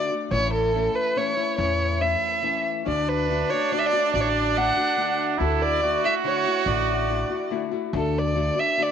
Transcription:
Already playing: nylon-string guitar D3 A3 D4
0.11 nylon-string guitar A3 D4 F#4
0.31 upright bass A1, nylon-string guitar A2 E3 A3 C#4 E4, violin C#5
0.53 violin A4
0.74 nylon-string guitar E3 A3 C#4 E4
0.95 violin B4
1.16 nylon-string guitar E3 A3 C#4 E4, violin C#5
1.36 nylon-string guitar A3 C#4 E4
1.57 upright bass E2, nylon-string guitar A2 E3 A3 C#4 E4, violin C#5
2.00 nylon-string guitar E3 A3 C#4 E4, violin E5
2.42 nylon-string guitar E3 A3 C#4 E4
2.85 upright bass D2, nylon-string guitar D3 A3 D4 F#4, trumpet D4, violin D5
3.09 violin B4
3.29 nylon-string guitar D3 A3 D4 F#4
3.50 nylon-string guitar A3 D4 F#4, violin C#5
3.71 nylon-string guitar D3 A3 D4 F#4, violin D5
3.79 violin E5
3.86 violin D5
3.93 nylon-string guitar A3 D4 F#4
4.13 upright bass A1, nylon-string guitar D3 A3 D4 F#4, violin D5
4.20 violin C#5
4.29 violin D5
4.56 nylon-string guitar D3 A3 D4 F#4, violin F#5
4.76 nylon-string guitar A3 D4 F#4
4.97 nylon-string guitar D3 A3 D4 F#4
5.38 upright bass D2, nylon-string guitar D3 A3 E4 F#4, trumpet E4, violin A4
5.62 violin D5
5.82 nylon-string guitar D3 A3 E4 F#4, trumpet F#4
6.04 nylon-string guitar A3 E4 F#4, violin E5
6.24 nylon-string guitar D3 A3 E4 F#4, violin C#5
6.46 nylon-string guitar A3 E4 F#4
6.66 upright bass A1, nylon-string guitar D3 A3 E4 F#4, violin D5
7.08 nylon-string guitar D3 A3 E4 F#4
7.30 nylon-string guitar A3 E4 F#4
7.50 nylon-string guitar D3 A3 E4 F#4
7.71 nylon-string guitar A3 E4 F#4
7.93 upright bass D2, nylon-string guitar D3 A3 D4 F#4, violin A4
8.18 violin D5
8.35 nylon-string guitar D3 A3 D4 F#4
8.56 nylon-string guitar A3 D4 F#4, violin E5
8.78 nylon-string guitar D3 A3 D4 F#4
8.82 violin D5

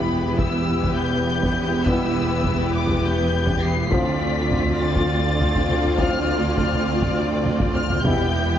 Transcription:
Already playing: double bass section E1, cello section E2, viola section B3 E4, violin section G4 B4 B5
0.38 violin section E6, taiko
0.82 taiko
0.97 violin section G6
1.42 taiko
1.85 trombone section B2 G3, french horn section B3 E4, violin section E6, taiko
2.44 taiko
2.74 violin section D6
2.88 taiko
3.04 violin section G6
3.47 taiko
3.62 violin section C7
3.90 double bass section D2, cello section D2, trombone section A2 F3, viola section C4 F4, french horn section C4 F4, violin section F4 D5 B6, taiko
4.50 taiko
4.66 taiko low
4.80 violin section A6
4.95 taiko
5.40 taiko low
5.55 taiko
5.69 taiko low
5.84 taiko low
5.96 trombone section A2 F3, french horn section C4 F4, violin section F6, taiko
6.57 violin section F6, taiko
6.72 taiko low
7.01 taiko
7.45 taiko low
7.60 taiko
7.74 violin section F6, taiko low
7.89 taiko low
8.01 double bass section E1, cello section E2, trombone section B2 G3, viola section B3, french horn section B3 E4, violin section G4 G5 G6, taiko
8.06 viola section E4

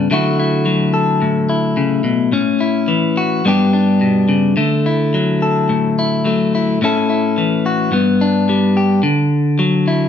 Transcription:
0.11 clean electric guitar D3 F#3 A3 E4 F#4
0.39 clean electric guitar E4
0.66 clean electric guitar F#3
0.94 clean electric guitar A4
1.22 clean electric guitar A2
1.49 clean electric guitar E4
1.77 clean electric guitar C#3
2.04 clean electric guitar B2
2.32 clean electric guitar A2 C#4
2.60 clean electric guitar E4
2.88 clean electric guitar E3
3.17 clean electric guitar F#4
3.45 clean electric guitar G2 G3 B3 D4 G4
3.73 clean electric guitar D4
4.01 clean electric guitar B2
4.29 clean electric guitar C#3
4.57 clean electric guitar D3 A3
4.86 clean electric guitar E4
5.14 clean electric guitar F#3
5.42 clean electric guitar A4
5.69 clean electric guitar A2
5.99 clean electric guitar E4
6.25 clean electric guitar F#3 A3
6.55 clean electric guitar E4
6.82 clean electric guitar A2 C#4 E4 A4, muted clean electric guitar stroke
7.10 clean electric guitar E4
7.38 clean electric guitar E3
7.66 clean electric guitar F#4
7.92 clean electric guitar G2 B3
8.21 clean electric guitar D4
8.49 clean electric guitar G3
8.77 clean electric guitar G4
9.03 clean electric guitar D3
9.59 clean electric guitar F#3
9.88 clean electric guitar E4

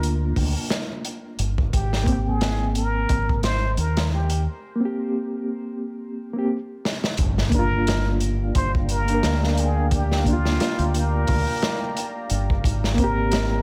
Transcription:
Already playing: fingered electric bass D2, reed electric piano A#3 D4 F4, muted trumpet A#4
0.03 closed hi-hat
0.36 fingered electric bass D2, kick, open hi-hat
0.70 snare, closed hi-hat
1.05 closed hi-hat
1.39 fingered electric bass G1, closed hi-hat
1.58 kick
1.73 fingered electric bass G#1, muted trumpet G4, kick, closed hi-hat
1.93 snare
2.03 reed electric piano A#3, kick, closed hi-hat
2.08 reed electric piano C4
2.12 reed electric piano G5
2.28 muted trumpet G#4
2.41 snare, closed hi-hat
2.75 muted trumpet A#4, closed hi-hat
3.09 fingered electric bass G#1, kick, closed hi-hat
3.29 kick
3.43 muted trumpet C5, snare, closed hi-hat
3.77 fingered electric bass D#2, muted trumpet A#4, closed hi-hat
3.97 snare, closed hi-hat
4.13 muted trumpet G4
4.30 closed hi-hat
4.76 reed electric piano A#3
4.80 reed electric piano C4
4.85 reed electric piano G4
6.34 reed electric piano A#3 C4
6.39 reed electric piano G4
6.85 snare
7.04 snare
7.17 fingered electric bass G1, ambient pad D5 F5 G5 A#5, kick, closed hi-hat, impact
7.38 snare
7.49 reed electric piano A#3, kick, closed hi-hat
7.54 reed electric piano D4, muted trumpet A#4
7.59 reed electric piano F4
7.87 snare, closed hi-hat
8.20 closed hi-hat
8.55 fingered electric bass G1, muted trumpet C5, kick, closed hi-hat
8.75 kick
8.89 muted trumpet A#4, closed hi-hat
9.05 reed electric piano A#3, closed hi-hat
9.10 reed electric piano D4
9.14 reed electric piano A#4
9.23 fingered electric bass D2, snare, closed hi-hat
9.44 snare
9.53 muted trumpet A#4
9.57 muted trumpet G#4, closed hi-hat
9.91 muted trumpet G4, kick, closed hi-hat
10.12 snare
10.24 reed electric piano A#3, kick, closed hi-hat
10.28 reed electric piano D4, muted trumpet F4
10.33 reed electric piano F4
10.45 snare
10.60 snare, closed hi-hat
10.79 fingered electric bass D2, closed hi-hat
10.94 muted trumpet A#4, closed hi-hat
11.27 fingered electric bass D2, kick, open hi-hat
11.62 snare, closed hi-hat
11.97 closed hi-hat
12.30 fingered electric bass G1, closed hi-hat
12.50 kick
12.64 fingered electric bass G#1, ambient pad G#3 C5 G5, kick, closed hi-hat
12.84 snare
12.94 reed electric piano A#3, kick, closed hi-hat
12.99 reed electric piano C4, muted trumpet A#4
13.04 reed electric piano G4
13.32 snare, closed hi-hat

